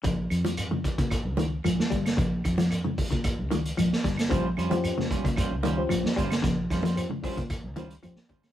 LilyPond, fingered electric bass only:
\new Staff \with { instrumentName = "Fingered electric bass" } { \clef bass \time 4/4 \key bes \dorian \tempo 4 = 112 bes,,8 f,4~ f,16 bes,8 des,8. bes,,16 r16 g,,8 | bes,,8 f,4~ f,16 bes,8 des,8. bes,,16 r16 g,,8 | bes,,8 f,4~ f,16 bes,8 des,8. bes,,16 r16 g,,8 | bes,,8 f,4~ f,16 bes,8 des,8. bes,,16 r16 g,,8 | }